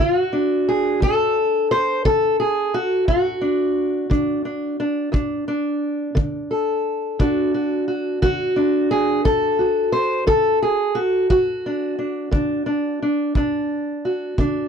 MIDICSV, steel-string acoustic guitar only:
0, 0, Header, 1, 2, 480
1, 0, Start_track
1, 0, Tempo, 684932
1, 2156, Time_signature, 12, 3, 24, 8
1, 10290, End_track
2, 0, Start_track
2, 0, Title_t, "Steel-string acoustic guitar"
2, 0, Program_c, 0, 25
2, 0, Note_on_c, 0, 50, 62
2, 0, Note_on_c, 0, 65, 84
2, 130, Note_off_c, 0, 65, 0
2, 130, Note_on_c, 0, 66, 84
2, 229, Note_on_c, 0, 62, 45
2, 421, Note_off_c, 0, 50, 0
2, 481, Note_on_c, 0, 68, 78
2, 703, Note_on_c, 0, 38, 67
2, 716, Note_off_c, 0, 68, 0
2, 723, Note_on_c, 0, 69, 96
2, 953, Note_off_c, 0, 66, 0
2, 1141, Note_off_c, 0, 38, 0
2, 1197, Note_off_c, 0, 69, 0
2, 1199, Note_on_c, 0, 72, 102
2, 1436, Note_off_c, 0, 72, 0
2, 1439, Note_on_c, 0, 50, 65
2, 1439, Note_on_c, 0, 69, 90
2, 1677, Note_off_c, 0, 69, 0
2, 1680, Note_on_c, 0, 68, 83
2, 1870, Note_off_c, 0, 50, 0
2, 1918, Note_off_c, 0, 68, 0
2, 1922, Note_on_c, 0, 66, 78
2, 2149, Note_off_c, 0, 66, 0
2, 2158, Note_on_c, 0, 66, 76
2, 2159, Note_on_c, 0, 38, 64
2, 2390, Note_off_c, 0, 62, 0
2, 2392, Note_on_c, 0, 62, 44
2, 2591, Note_off_c, 0, 38, 0
2, 2871, Note_on_c, 0, 50, 57
2, 2875, Note_off_c, 0, 62, 0
2, 2878, Note_on_c, 0, 62, 48
2, 3117, Note_off_c, 0, 62, 0
2, 3120, Note_on_c, 0, 62, 41
2, 3307, Note_off_c, 0, 50, 0
2, 3359, Note_off_c, 0, 62, 0
2, 3362, Note_on_c, 0, 62, 49
2, 3587, Note_on_c, 0, 38, 74
2, 3590, Note_off_c, 0, 62, 0
2, 3593, Note_on_c, 0, 62, 47
2, 3837, Note_off_c, 0, 62, 0
2, 3839, Note_on_c, 0, 62, 50
2, 4026, Note_off_c, 0, 38, 0
2, 4309, Note_on_c, 0, 50, 66
2, 4561, Note_off_c, 0, 66, 0
2, 4561, Note_on_c, 0, 69, 43
2, 4747, Note_off_c, 0, 50, 0
2, 5041, Note_on_c, 0, 38, 71
2, 5045, Note_off_c, 0, 62, 0
2, 5048, Note_on_c, 0, 62, 50
2, 5052, Note_on_c, 0, 66, 53
2, 5284, Note_off_c, 0, 66, 0
2, 5287, Note_on_c, 0, 66, 44
2, 5473, Note_off_c, 0, 38, 0
2, 5518, Note_off_c, 0, 66, 0
2, 5521, Note_on_c, 0, 66, 46
2, 5759, Note_off_c, 0, 66, 0
2, 5762, Note_on_c, 0, 66, 82
2, 5765, Note_on_c, 0, 50, 62
2, 5998, Note_off_c, 0, 62, 0
2, 6001, Note_on_c, 0, 62, 44
2, 6194, Note_off_c, 0, 50, 0
2, 6240, Note_off_c, 0, 69, 0
2, 6243, Note_on_c, 0, 68, 85
2, 6479, Note_on_c, 0, 38, 69
2, 6480, Note_off_c, 0, 68, 0
2, 6482, Note_on_c, 0, 69, 97
2, 6711, Note_off_c, 0, 66, 0
2, 6719, Note_on_c, 0, 66, 49
2, 6911, Note_off_c, 0, 38, 0
2, 6952, Note_off_c, 0, 69, 0
2, 6955, Note_on_c, 0, 72, 96
2, 7195, Note_on_c, 0, 50, 65
2, 7197, Note_off_c, 0, 72, 0
2, 7200, Note_on_c, 0, 69, 96
2, 7439, Note_off_c, 0, 69, 0
2, 7446, Note_on_c, 0, 68, 83
2, 7629, Note_off_c, 0, 50, 0
2, 7665, Note_off_c, 0, 66, 0
2, 7673, Note_on_c, 0, 66, 75
2, 7682, Note_off_c, 0, 68, 0
2, 7912, Note_off_c, 0, 66, 0
2, 7918, Note_on_c, 0, 38, 72
2, 7921, Note_on_c, 0, 66, 74
2, 8169, Note_off_c, 0, 62, 0
2, 8172, Note_on_c, 0, 62, 47
2, 8350, Note_off_c, 0, 38, 0
2, 8397, Note_off_c, 0, 62, 0
2, 8400, Note_on_c, 0, 62, 44
2, 8630, Note_on_c, 0, 50, 64
2, 8633, Note_off_c, 0, 62, 0
2, 8636, Note_on_c, 0, 62, 47
2, 8870, Note_off_c, 0, 62, 0
2, 8873, Note_on_c, 0, 62, 44
2, 9065, Note_off_c, 0, 50, 0
2, 9125, Note_off_c, 0, 62, 0
2, 9128, Note_on_c, 0, 62, 45
2, 9362, Note_on_c, 0, 38, 67
2, 9364, Note_off_c, 0, 62, 0
2, 9367, Note_on_c, 0, 62, 45
2, 9790, Note_off_c, 0, 38, 0
2, 9835, Note_off_c, 0, 66, 0
2, 9846, Note_on_c, 0, 66, 43
2, 10082, Note_on_c, 0, 50, 62
2, 10084, Note_off_c, 0, 62, 0
2, 10087, Note_on_c, 0, 62, 48
2, 10290, Note_off_c, 0, 50, 0
2, 10290, Note_off_c, 0, 62, 0
2, 10290, Note_off_c, 0, 66, 0
2, 10290, End_track
0, 0, End_of_file